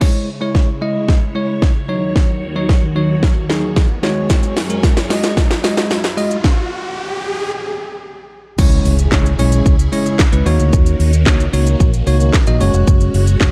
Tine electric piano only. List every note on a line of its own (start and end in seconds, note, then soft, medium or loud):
0.01 0.28 G#3 medium
0.01 0.28 E4 medium
0.01 0.28 C#5 medium
0.41 0.68 G#3 medium
0.41 0.69 E4 medium
0.41 0.69 C#5 medium
0.82 1.18 G#3 medium
0.82 1.18 E4 medium
0.82 1.18 D#5 medium
1.35 1.71 G#3 medium
1.35 1.71 E4 medium
1.35 1.72 C#5 medium
1.88 2.42 F#3 medium
1.88 2.42 D#4 medium
1.88 2.43 C#5 loud
2.55 2.83 F#3 medium
2.55 2.83 D#4 medium
2.55 2.83 C#5 medium
2.96 3.32 F#3 medium
2.96 3.32 D#4 medium
2.96 3.32 C#5 medium
3.49 3.86 F#3 medium
3.49 3.86 D#4 medium
3.49 3.86 G#4 medium
4.03 4.57 G#3 medium
4.03 4.57 F#4 medium
4.03 4.57 C#5 loud
4.70 4.97 G#3 medium
4.70 4.97 F#4 medium
4.70 4.97 A#4 medium
5.10 5.46 G#3 medium
5.10 5.46 F#4 medium
5.10 5.46 D#5 loud
5.63 6.00 G#3 medium
5.63 6.00 F#4 medium
5.63 6.00 D#5 medium
6.17 6.35 G#3 medium
6.17 6.36 F#4 medium
6.17 6.36 D#5 loud
8.58 8.95 G#3 medium
8.58 8.95 C#4 medium
8.58 8.95 E4 medium
8.58 8.95 C#5 loud
9.12 9.30 G#3 medium
9.12 9.30 C#4 medium
9.12 9.30 E4 medium
9.12 9.30 C#5 loud
9.39 9.75 G#3 medium
9.39 9.75 C#4 medium
9.39 9.75 E4 medium
9.39 9.75 C#5 loud
9.92 10.19 G#3 medium
9.92 10.20 C#4 medium
9.92 10.20 E4 medium
9.92 10.20 C#5 loud
10.32 10.46 G#3 medium
10.32 10.46 C#4 medium
10.32 10.46 E4 medium
10.32 10.46 B4 medium
10.46 11.10 A#3 loud
10.46 11.10 D#4 medium
10.46 11.10 F#4 medium
10.46 11.11 C#5 loud
11.26 11.44 A#3 medium
11.26 11.45 D#4 medium
11.26 11.45 F#4 medium
11.26 11.45 C#5 loud
11.53 11.89 A#3 medium
11.53 11.89 D#4 medium
11.53 11.89 F#4 medium
11.53 11.89 C#5 loud
12.07 12.34 A#3 medium
12.07 12.34 D#4 medium
12.07 12.34 F#4 medium
12.07 12.34 C#5 loud
12.47 12.60 A#3 medium
12.47 12.61 D#4 medium
12.47 12.59 F#4 medium
12.47 12.61 D#5 medium
12.60 13.25 G#3 loud
12.60 13.25 C#4 medium
12.60 13.25 F#4 medium
12.60 13.25 C#5 loud
13.41 13.52 G#3 medium
13.41 13.52 C#4 medium
13.41 13.52 F#4 medium
13.41 13.52 C#5 loud